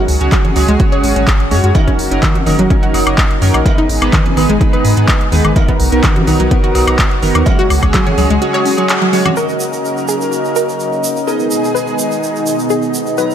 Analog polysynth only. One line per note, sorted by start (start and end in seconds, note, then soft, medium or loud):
0.21 0.31 G#3 medium
0.21 0.31 C#4 medium
0.21 0.31 F#4 medium
0.21 0.31 C#5 loud
0.56 0.67 G#3 medium
0.56 0.67 C#4 medium
0.56 0.67 F#4 medium
0.56 0.67 C#5 medium
0.80 1.13 G#3 medium
0.80 1.13 C#4 medium
0.80 1.13 F#4 medium
0.80 1.13 C#5 medium
1.16 1.26 G#3 medium
1.16 1.26 C#4 medium
1.16 1.26 F#4 medium
1.16 1.26 C#5 medium
1.51 1.69 G#3 medium
1.51 1.69 C#4 medium
1.51 1.69 F#4 medium
1.51 1.69 C#5 loud
1.75 1.86 F#3 medium
1.75 1.86 C#4 medium
1.75 1.86 D#4 medium
1.75 1.86 A#4 medium
2.11 2.22 F#3 medium
2.11 2.22 C#4 medium
2.11 2.22 D#4 medium
2.11 2.22 A#4 loud
2.46 2.58 F#3 medium
2.46 2.58 C#4 medium
2.46 2.58 D#4 medium
2.46 2.58 A#4 medium
2.70 3.04 F#3 medium
2.70 3.03 C#4 medium
2.70 3.04 D#4 medium
2.70 3.04 A#4 medium
3.07 3.17 F#3 medium
3.07 3.17 C#4 medium
3.07 3.17 D#4 medium
3.07 3.17 A#4 medium
3.42 3.59 F#3 medium
3.42 3.59 C#4 medium
3.42 3.59 D#4 medium
3.42 3.59 A#4 loud
3.66 3.77 G#3 medium
3.66 3.77 B3 medium
3.66 3.77 D#4 medium
3.66 3.77 B4 medium
4.02 4.12 G#3 medium
4.02 4.12 B3 medium
4.02 4.12 D#4 medium
4.02 4.12 B4 loud
4.37 4.48 G#3 medium
4.37 4.48 B3 medium
4.37 4.48 D#4 medium
4.37 4.48 B4 medium
4.61 4.94 G#3 medium
4.61 4.94 B3 medium
4.61 4.94 D#4 medium
4.61 4.94 B4 medium
4.97 5.07 G#3 medium
4.97 5.07 B3 medium
4.97 5.07 D#4 medium
4.97 5.07 B4 medium
5.32 5.50 G#3 medium
5.32 5.50 B3 medium
5.32 5.50 D#4 medium
5.32 5.50 B4 loud
5.56 5.67 F#3 medium
5.56 5.67 B3 medium
5.56 5.67 D#4 medium
5.56 5.67 A#4 medium
5.92 6.03 F#3 medium
5.92 6.03 B3 medium
5.92 6.02 D#4 medium
5.92 6.03 A#4 loud
6.27 6.39 F#3 medium
6.27 6.39 B3 medium
6.27 6.39 D#4 medium
6.27 6.39 A#4 medium
6.51 6.84 F#3 medium
6.51 6.84 B3 medium
6.51 6.84 D#4 medium
6.51 6.84 A#4 medium
6.87 6.98 F#3 medium
6.87 6.98 B3 medium
6.87 6.98 D#4 medium
6.87 6.98 A#4 medium
7.22 7.40 F#3 medium
7.22 7.40 B3 medium
7.22 7.40 D#4 medium
7.22 7.40 A#4 loud
7.46 7.58 G#3 medium
7.46 7.58 C#4 medium
7.46 7.58 F#4 medium
7.46 7.58 C#5 medium
7.83 7.93 G#3 loud
7.83 7.93 C#4 medium
7.83 7.93 F#4 medium
7.83 7.93 C#5 loud
8.18 8.29 G#3 medium
8.18 8.29 C#4 medium
8.18 8.29 F#4 medium
8.18 8.29 C#5 medium
8.41 8.75 G#3 medium
8.41 8.75 C#4 medium
8.41 8.75 F#4 medium
8.41 8.75 C#5 medium
8.78 8.88 G#3 medium
8.78 8.88 C#4 medium
8.78 8.88 F#4 medium
8.78 8.88 C#5 medium
9.13 9.31 G#3 loud
9.13 9.31 C#4 medium
9.13 9.31 F#4 medium
9.13 9.31 C#5 loud
9.37 11.25 C#4 medium
9.37 11.25 F#4 medium
9.37 11.25 A#4 medium
9.37 11.25 D#5 medium
11.27 13.15 B3 medium
11.27 13.15 D#4 medium
11.27 13.15 G#4 medium
11.27 13.15 D#5 medium
13.18 13.35 F#3 medium
13.18 13.35 B3 medium
13.18 13.35 D#4 medium
13.18 13.35 A#5 medium